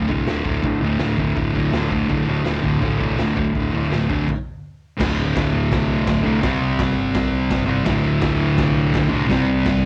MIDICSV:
0, 0, Header, 1, 4, 480
1, 0, Start_track
1, 0, Tempo, 362976
1, 848, Time_signature, 4, 2, 24, 8
1, 7086, Tempo, 358209
1, 13109, End_track
2, 0, Start_track
2, 0, Title_t, "Distorted electric guitar"
2, 0, Program_c, 0, 30
2, 0, Note_on_c, 0, 38, 76
2, 111, Note_on_c, 0, 50, 74
2, 146, Note_on_c, 0, 45, 69
2, 151, Note_off_c, 0, 38, 0
2, 156, Note_on_c, 0, 38, 70
2, 349, Note_off_c, 0, 38, 0
2, 355, Note_on_c, 0, 38, 75
2, 361, Note_off_c, 0, 45, 0
2, 377, Note_on_c, 0, 45, 86
2, 388, Note_off_c, 0, 50, 0
2, 393, Note_on_c, 0, 50, 84
2, 597, Note_off_c, 0, 50, 0
2, 602, Note_on_c, 0, 50, 70
2, 622, Note_off_c, 0, 45, 0
2, 638, Note_on_c, 0, 45, 63
2, 826, Note_off_c, 0, 38, 0
2, 832, Note_on_c, 0, 38, 87
2, 836, Note_off_c, 0, 45, 0
2, 852, Note_on_c, 0, 45, 83
2, 866, Note_off_c, 0, 50, 0
2, 872, Note_on_c, 0, 50, 96
2, 1067, Note_off_c, 0, 50, 0
2, 1073, Note_on_c, 0, 50, 62
2, 1096, Note_off_c, 0, 45, 0
2, 1112, Note_on_c, 0, 45, 57
2, 1320, Note_off_c, 0, 38, 0
2, 1326, Note_on_c, 0, 38, 70
2, 1336, Note_off_c, 0, 45, 0
2, 1352, Note_on_c, 0, 45, 70
2, 1370, Note_off_c, 0, 50, 0
2, 1376, Note_on_c, 0, 50, 69
2, 1554, Note_off_c, 0, 50, 0
2, 1559, Note_on_c, 0, 50, 80
2, 1577, Note_off_c, 0, 45, 0
2, 1593, Note_on_c, 0, 45, 86
2, 1607, Note_off_c, 0, 38, 0
2, 1613, Note_on_c, 0, 38, 73
2, 1799, Note_off_c, 0, 38, 0
2, 1802, Note_off_c, 0, 45, 0
2, 1804, Note_on_c, 0, 38, 74
2, 1818, Note_on_c, 0, 45, 78
2, 1835, Note_off_c, 0, 50, 0
2, 1841, Note_on_c, 0, 50, 77
2, 2031, Note_off_c, 0, 50, 0
2, 2036, Note_on_c, 0, 50, 74
2, 2050, Note_off_c, 0, 45, 0
2, 2066, Note_on_c, 0, 45, 72
2, 2083, Note_off_c, 0, 38, 0
2, 2088, Note_on_c, 0, 38, 70
2, 2272, Note_off_c, 0, 38, 0
2, 2277, Note_on_c, 0, 38, 74
2, 2288, Note_off_c, 0, 45, 0
2, 2303, Note_on_c, 0, 45, 80
2, 2319, Note_off_c, 0, 50, 0
2, 2324, Note_on_c, 0, 50, 76
2, 2504, Note_off_c, 0, 50, 0
2, 2510, Note_on_c, 0, 50, 67
2, 2537, Note_off_c, 0, 45, 0
2, 2553, Note_on_c, 0, 45, 64
2, 2757, Note_off_c, 0, 38, 0
2, 2762, Note_on_c, 0, 38, 89
2, 2769, Note_off_c, 0, 45, 0
2, 2785, Note_on_c, 0, 45, 94
2, 2806, Note_off_c, 0, 50, 0
2, 2811, Note_on_c, 0, 50, 93
2, 2982, Note_off_c, 0, 50, 0
2, 2987, Note_on_c, 0, 50, 61
2, 3017, Note_off_c, 0, 45, 0
2, 3033, Note_on_c, 0, 45, 55
2, 3216, Note_off_c, 0, 38, 0
2, 3222, Note_on_c, 0, 38, 65
2, 3224, Note_off_c, 0, 45, 0
2, 3240, Note_on_c, 0, 45, 72
2, 3263, Note_off_c, 0, 50, 0
2, 3268, Note_on_c, 0, 50, 79
2, 3463, Note_off_c, 0, 50, 0
2, 3468, Note_on_c, 0, 50, 89
2, 3471, Note_off_c, 0, 45, 0
2, 3487, Note_on_c, 0, 45, 77
2, 3498, Note_off_c, 0, 38, 0
2, 3503, Note_on_c, 0, 38, 65
2, 3692, Note_off_c, 0, 38, 0
2, 3708, Note_on_c, 0, 38, 72
2, 3720, Note_off_c, 0, 45, 0
2, 3735, Note_off_c, 0, 50, 0
2, 3736, Note_on_c, 0, 45, 77
2, 3751, Note_on_c, 0, 50, 88
2, 3930, Note_off_c, 0, 50, 0
2, 3946, Note_on_c, 0, 50, 78
2, 3951, Note_off_c, 0, 45, 0
2, 3967, Note_on_c, 0, 45, 75
2, 3971, Note_off_c, 0, 38, 0
2, 3987, Note_on_c, 0, 38, 62
2, 4170, Note_off_c, 0, 38, 0
2, 4186, Note_on_c, 0, 38, 73
2, 4193, Note_off_c, 0, 45, 0
2, 4209, Note_on_c, 0, 45, 76
2, 4210, Note_off_c, 0, 50, 0
2, 4225, Note_on_c, 0, 50, 80
2, 4417, Note_off_c, 0, 50, 0
2, 4433, Note_on_c, 0, 50, 77
2, 4463, Note_off_c, 0, 45, 0
2, 4479, Note_on_c, 0, 45, 59
2, 4649, Note_off_c, 0, 38, 0
2, 4665, Note_on_c, 0, 38, 82
2, 4673, Note_off_c, 0, 45, 0
2, 4689, Note_on_c, 0, 45, 90
2, 4693, Note_off_c, 0, 50, 0
2, 4709, Note_on_c, 0, 50, 99
2, 4901, Note_off_c, 0, 50, 0
2, 4917, Note_on_c, 0, 50, 66
2, 4939, Note_off_c, 0, 45, 0
2, 4955, Note_on_c, 0, 45, 59
2, 5142, Note_off_c, 0, 38, 0
2, 5158, Note_on_c, 0, 38, 68
2, 5166, Note_off_c, 0, 45, 0
2, 5181, Note_on_c, 0, 45, 70
2, 5185, Note_off_c, 0, 50, 0
2, 5201, Note_on_c, 0, 50, 80
2, 5388, Note_off_c, 0, 50, 0
2, 5404, Note_on_c, 0, 50, 88
2, 5413, Note_off_c, 0, 45, 0
2, 5429, Note_on_c, 0, 45, 87
2, 5430, Note_off_c, 0, 38, 0
2, 5446, Note_on_c, 0, 38, 75
2, 5634, Note_off_c, 0, 50, 0
2, 5646, Note_off_c, 0, 45, 0
2, 5655, Note_off_c, 0, 38, 0
2, 6581, Note_on_c, 0, 38, 96
2, 6608, Note_on_c, 0, 45, 97
2, 6633, Note_on_c, 0, 50, 100
2, 8232, Note_off_c, 0, 50, 0
2, 8248, Note_on_c, 0, 50, 101
2, 8261, Note_off_c, 0, 38, 0
2, 8264, Note_off_c, 0, 45, 0
2, 8280, Note_on_c, 0, 45, 93
2, 8299, Note_on_c, 0, 38, 82
2, 8480, Note_off_c, 0, 38, 0
2, 8485, Note_on_c, 0, 48, 98
2, 8495, Note_off_c, 0, 50, 0
2, 8509, Note_off_c, 0, 45, 0
2, 8514, Note_on_c, 0, 55, 96
2, 8537, Note_on_c, 0, 60, 106
2, 10150, Note_off_c, 0, 60, 0
2, 10166, Note_on_c, 0, 60, 91
2, 10173, Note_off_c, 0, 48, 0
2, 10188, Note_off_c, 0, 55, 0
2, 10201, Note_on_c, 0, 55, 83
2, 10217, Note_on_c, 0, 48, 80
2, 10413, Note_off_c, 0, 48, 0
2, 10413, Note_off_c, 0, 60, 0
2, 10418, Note_on_c, 0, 38, 89
2, 10431, Note_off_c, 0, 55, 0
2, 10443, Note_on_c, 0, 45, 97
2, 10465, Note_on_c, 0, 50, 94
2, 12070, Note_off_c, 0, 50, 0
2, 12086, Note_on_c, 0, 50, 103
2, 12097, Note_off_c, 0, 38, 0
2, 12100, Note_off_c, 0, 45, 0
2, 12116, Note_on_c, 0, 45, 83
2, 12138, Note_on_c, 0, 38, 82
2, 12321, Note_off_c, 0, 38, 0
2, 12326, Note_on_c, 0, 48, 96
2, 12332, Note_off_c, 0, 50, 0
2, 12347, Note_off_c, 0, 45, 0
2, 12357, Note_on_c, 0, 55, 92
2, 12382, Note_on_c, 0, 60, 94
2, 13109, Note_off_c, 0, 48, 0
2, 13109, Note_off_c, 0, 55, 0
2, 13109, Note_off_c, 0, 60, 0
2, 13109, End_track
3, 0, Start_track
3, 0, Title_t, "Fingered electric bass"
3, 0, Program_c, 1, 33
3, 114, Note_on_c, 1, 36, 73
3, 327, Note_off_c, 1, 36, 0
3, 366, Note_on_c, 1, 26, 87
3, 574, Note_off_c, 1, 26, 0
3, 599, Note_on_c, 1, 26, 81
3, 810, Note_off_c, 1, 26, 0
3, 844, Note_on_c, 1, 26, 88
3, 1045, Note_off_c, 1, 26, 0
3, 1053, Note_on_c, 1, 26, 86
3, 1276, Note_off_c, 1, 26, 0
3, 1311, Note_on_c, 1, 26, 78
3, 1527, Note_off_c, 1, 26, 0
3, 1564, Note_on_c, 1, 26, 81
3, 1774, Note_off_c, 1, 26, 0
3, 1810, Note_on_c, 1, 26, 85
3, 2018, Note_off_c, 1, 26, 0
3, 2051, Note_on_c, 1, 26, 76
3, 2259, Note_off_c, 1, 26, 0
3, 2289, Note_on_c, 1, 26, 90
3, 2498, Note_off_c, 1, 26, 0
3, 2527, Note_on_c, 1, 26, 85
3, 2737, Note_off_c, 1, 26, 0
3, 2765, Note_on_c, 1, 26, 84
3, 2976, Note_off_c, 1, 26, 0
3, 3008, Note_on_c, 1, 26, 89
3, 3217, Note_off_c, 1, 26, 0
3, 3255, Note_on_c, 1, 26, 89
3, 3462, Note_off_c, 1, 26, 0
3, 3482, Note_on_c, 1, 26, 81
3, 3695, Note_off_c, 1, 26, 0
3, 3730, Note_on_c, 1, 26, 92
3, 3939, Note_off_c, 1, 26, 0
3, 3973, Note_on_c, 1, 36, 76
3, 4181, Note_off_c, 1, 36, 0
3, 4207, Note_on_c, 1, 26, 90
3, 4417, Note_off_c, 1, 26, 0
3, 4445, Note_on_c, 1, 26, 85
3, 4657, Note_off_c, 1, 26, 0
3, 4700, Note_on_c, 1, 26, 85
3, 4905, Note_off_c, 1, 26, 0
3, 4938, Note_on_c, 1, 26, 89
3, 5143, Note_off_c, 1, 26, 0
3, 5200, Note_on_c, 1, 26, 78
3, 5396, Note_off_c, 1, 26, 0
3, 5419, Note_on_c, 1, 26, 82
3, 5623, Note_off_c, 1, 26, 0
3, 6616, Note_on_c, 1, 26, 88
3, 6837, Note_off_c, 1, 26, 0
3, 6876, Note_on_c, 1, 26, 93
3, 7081, Note_off_c, 1, 26, 0
3, 7089, Note_on_c, 1, 38, 89
3, 7314, Note_off_c, 1, 38, 0
3, 7322, Note_on_c, 1, 26, 90
3, 7551, Note_off_c, 1, 26, 0
3, 7568, Note_on_c, 1, 36, 88
3, 8021, Note_off_c, 1, 36, 0
3, 8045, Note_on_c, 1, 26, 96
3, 8266, Note_off_c, 1, 26, 0
3, 8274, Note_on_c, 1, 36, 94
3, 8507, Note_off_c, 1, 36, 0
3, 8531, Note_on_c, 1, 36, 104
3, 8737, Note_off_c, 1, 36, 0
3, 8745, Note_on_c, 1, 36, 101
3, 8983, Note_off_c, 1, 36, 0
3, 9010, Note_on_c, 1, 36, 92
3, 9201, Note_off_c, 1, 36, 0
3, 9209, Note_on_c, 1, 31, 95
3, 9454, Note_off_c, 1, 31, 0
3, 9477, Note_on_c, 1, 36, 95
3, 9703, Note_off_c, 1, 36, 0
3, 9711, Note_on_c, 1, 36, 90
3, 9946, Note_off_c, 1, 36, 0
3, 9970, Note_on_c, 1, 31, 100
3, 10421, Note_off_c, 1, 31, 0
3, 10435, Note_on_c, 1, 26, 105
3, 10667, Note_off_c, 1, 26, 0
3, 10689, Note_on_c, 1, 26, 92
3, 10915, Note_off_c, 1, 26, 0
3, 10921, Note_on_c, 1, 38, 100
3, 11150, Note_off_c, 1, 38, 0
3, 11171, Note_on_c, 1, 26, 89
3, 11395, Note_off_c, 1, 26, 0
3, 11401, Note_on_c, 1, 36, 101
3, 11855, Note_off_c, 1, 36, 0
3, 11882, Note_on_c, 1, 26, 100
3, 12105, Note_off_c, 1, 26, 0
3, 12113, Note_on_c, 1, 36, 100
3, 12353, Note_off_c, 1, 36, 0
3, 12358, Note_on_c, 1, 36, 95
3, 12588, Note_off_c, 1, 36, 0
3, 12602, Note_on_c, 1, 36, 92
3, 12829, Note_off_c, 1, 36, 0
3, 12841, Note_on_c, 1, 36, 93
3, 13058, Note_off_c, 1, 36, 0
3, 13066, Note_on_c, 1, 31, 86
3, 13109, Note_off_c, 1, 31, 0
3, 13109, End_track
4, 0, Start_track
4, 0, Title_t, "Drums"
4, 111, Note_on_c, 9, 43, 64
4, 120, Note_on_c, 9, 36, 80
4, 243, Note_off_c, 9, 43, 0
4, 252, Note_off_c, 9, 36, 0
4, 359, Note_on_c, 9, 43, 75
4, 367, Note_on_c, 9, 38, 95
4, 492, Note_off_c, 9, 43, 0
4, 499, Note_off_c, 9, 38, 0
4, 604, Note_on_c, 9, 36, 84
4, 606, Note_on_c, 9, 43, 58
4, 736, Note_off_c, 9, 36, 0
4, 739, Note_off_c, 9, 43, 0
4, 845, Note_on_c, 9, 43, 78
4, 846, Note_on_c, 9, 36, 98
4, 977, Note_off_c, 9, 43, 0
4, 979, Note_off_c, 9, 36, 0
4, 1080, Note_on_c, 9, 43, 55
4, 1212, Note_off_c, 9, 43, 0
4, 1312, Note_on_c, 9, 43, 73
4, 1320, Note_on_c, 9, 38, 97
4, 1444, Note_off_c, 9, 43, 0
4, 1452, Note_off_c, 9, 38, 0
4, 1557, Note_on_c, 9, 43, 60
4, 1566, Note_on_c, 9, 36, 82
4, 1689, Note_off_c, 9, 43, 0
4, 1698, Note_off_c, 9, 36, 0
4, 1812, Note_on_c, 9, 36, 100
4, 1813, Note_on_c, 9, 43, 74
4, 1944, Note_off_c, 9, 36, 0
4, 1945, Note_off_c, 9, 43, 0
4, 2055, Note_on_c, 9, 36, 81
4, 2063, Note_on_c, 9, 43, 54
4, 2187, Note_off_c, 9, 36, 0
4, 2195, Note_off_c, 9, 43, 0
4, 2288, Note_on_c, 9, 43, 77
4, 2296, Note_on_c, 9, 38, 104
4, 2421, Note_off_c, 9, 43, 0
4, 2429, Note_off_c, 9, 38, 0
4, 2529, Note_on_c, 9, 36, 86
4, 2532, Note_on_c, 9, 43, 59
4, 2662, Note_off_c, 9, 36, 0
4, 2665, Note_off_c, 9, 43, 0
4, 2764, Note_on_c, 9, 43, 78
4, 2770, Note_on_c, 9, 36, 105
4, 2896, Note_off_c, 9, 43, 0
4, 2902, Note_off_c, 9, 36, 0
4, 3012, Note_on_c, 9, 43, 62
4, 3144, Note_off_c, 9, 43, 0
4, 3241, Note_on_c, 9, 43, 77
4, 3249, Note_on_c, 9, 38, 97
4, 3373, Note_off_c, 9, 43, 0
4, 3381, Note_off_c, 9, 38, 0
4, 3490, Note_on_c, 9, 36, 82
4, 3492, Note_on_c, 9, 43, 63
4, 3623, Note_off_c, 9, 36, 0
4, 3624, Note_off_c, 9, 43, 0
4, 3717, Note_on_c, 9, 43, 82
4, 3728, Note_on_c, 9, 36, 96
4, 3849, Note_off_c, 9, 43, 0
4, 3860, Note_off_c, 9, 36, 0
4, 3973, Note_on_c, 9, 36, 86
4, 3974, Note_on_c, 9, 43, 63
4, 4105, Note_off_c, 9, 36, 0
4, 4106, Note_off_c, 9, 43, 0
4, 4206, Note_on_c, 9, 43, 75
4, 4213, Note_on_c, 9, 38, 96
4, 4338, Note_off_c, 9, 43, 0
4, 4346, Note_off_c, 9, 38, 0
4, 4448, Note_on_c, 9, 43, 63
4, 4455, Note_on_c, 9, 36, 83
4, 4580, Note_off_c, 9, 43, 0
4, 4587, Note_off_c, 9, 36, 0
4, 4694, Note_on_c, 9, 43, 76
4, 4697, Note_on_c, 9, 36, 98
4, 4827, Note_off_c, 9, 43, 0
4, 4829, Note_off_c, 9, 36, 0
4, 4940, Note_on_c, 9, 43, 54
4, 5073, Note_off_c, 9, 43, 0
4, 5178, Note_on_c, 9, 43, 71
4, 5186, Note_on_c, 9, 38, 102
4, 5311, Note_off_c, 9, 43, 0
4, 5319, Note_off_c, 9, 38, 0
4, 5417, Note_on_c, 9, 36, 82
4, 5418, Note_on_c, 9, 43, 63
4, 5549, Note_off_c, 9, 36, 0
4, 5550, Note_off_c, 9, 43, 0
4, 5658, Note_on_c, 9, 36, 97
4, 5668, Note_on_c, 9, 49, 81
4, 5790, Note_off_c, 9, 36, 0
4, 5800, Note_off_c, 9, 49, 0
4, 6611, Note_on_c, 9, 36, 111
4, 6615, Note_on_c, 9, 49, 112
4, 6615, Note_on_c, 9, 57, 65
4, 6622, Note_on_c, 9, 38, 119
4, 6743, Note_off_c, 9, 36, 0
4, 6747, Note_off_c, 9, 49, 0
4, 6747, Note_off_c, 9, 57, 0
4, 6755, Note_off_c, 9, 38, 0
4, 7086, Note_on_c, 9, 36, 100
4, 7093, Note_on_c, 9, 57, 66
4, 7101, Note_on_c, 9, 38, 110
4, 7220, Note_off_c, 9, 36, 0
4, 7227, Note_off_c, 9, 57, 0
4, 7235, Note_off_c, 9, 38, 0
4, 7568, Note_on_c, 9, 36, 118
4, 7572, Note_on_c, 9, 57, 67
4, 7580, Note_on_c, 9, 38, 115
4, 7702, Note_off_c, 9, 36, 0
4, 7706, Note_off_c, 9, 57, 0
4, 7714, Note_off_c, 9, 38, 0
4, 8041, Note_on_c, 9, 57, 69
4, 8046, Note_on_c, 9, 36, 117
4, 8049, Note_on_c, 9, 38, 120
4, 8175, Note_off_c, 9, 57, 0
4, 8180, Note_off_c, 9, 36, 0
4, 8183, Note_off_c, 9, 38, 0
4, 8524, Note_on_c, 9, 57, 61
4, 8528, Note_on_c, 9, 36, 114
4, 8532, Note_on_c, 9, 38, 117
4, 8658, Note_off_c, 9, 57, 0
4, 8662, Note_off_c, 9, 36, 0
4, 8666, Note_off_c, 9, 38, 0
4, 9008, Note_on_c, 9, 36, 105
4, 9009, Note_on_c, 9, 57, 64
4, 9017, Note_on_c, 9, 38, 108
4, 9142, Note_off_c, 9, 36, 0
4, 9143, Note_off_c, 9, 57, 0
4, 9151, Note_off_c, 9, 38, 0
4, 9483, Note_on_c, 9, 57, 64
4, 9485, Note_on_c, 9, 36, 110
4, 9491, Note_on_c, 9, 38, 120
4, 9617, Note_off_c, 9, 57, 0
4, 9619, Note_off_c, 9, 36, 0
4, 9625, Note_off_c, 9, 38, 0
4, 9963, Note_on_c, 9, 57, 68
4, 9966, Note_on_c, 9, 36, 113
4, 9971, Note_on_c, 9, 38, 105
4, 10097, Note_off_c, 9, 57, 0
4, 10100, Note_off_c, 9, 36, 0
4, 10105, Note_off_c, 9, 38, 0
4, 10433, Note_on_c, 9, 57, 65
4, 10441, Note_on_c, 9, 36, 106
4, 10441, Note_on_c, 9, 38, 120
4, 10567, Note_off_c, 9, 57, 0
4, 10575, Note_off_c, 9, 36, 0
4, 10575, Note_off_c, 9, 38, 0
4, 10912, Note_on_c, 9, 57, 63
4, 10920, Note_on_c, 9, 38, 114
4, 10923, Note_on_c, 9, 36, 113
4, 11046, Note_off_c, 9, 57, 0
4, 11054, Note_off_c, 9, 38, 0
4, 11057, Note_off_c, 9, 36, 0
4, 11400, Note_on_c, 9, 57, 75
4, 11402, Note_on_c, 9, 36, 119
4, 11408, Note_on_c, 9, 38, 124
4, 11534, Note_off_c, 9, 57, 0
4, 11536, Note_off_c, 9, 36, 0
4, 11542, Note_off_c, 9, 38, 0
4, 11884, Note_on_c, 9, 36, 114
4, 11892, Note_on_c, 9, 57, 72
4, 11900, Note_on_c, 9, 38, 112
4, 12018, Note_off_c, 9, 36, 0
4, 12026, Note_off_c, 9, 57, 0
4, 12034, Note_off_c, 9, 38, 0
4, 12363, Note_on_c, 9, 36, 112
4, 12373, Note_on_c, 9, 57, 64
4, 12381, Note_on_c, 9, 38, 110
4, 12497, Note_off_c, 9, 36, 0
4, 12507, Note_off_c, 9, 57, 0
4, 12515, Note_off_c, 9, 38, 0
4, 12845, Note_on_c, 9, 57, 59
4, 12847, Note_on_c, 9, 36, 118
4, 12853, Note_on_c, 9, 38, 108
4, 12979, Note_off_c, 9, 57, 0
4, 12981, Note_off_c, 9, 36, 0
4, 12987, Note_off_c, 9, 38, 0
4, 13109, End_track
0, 0, End_of_file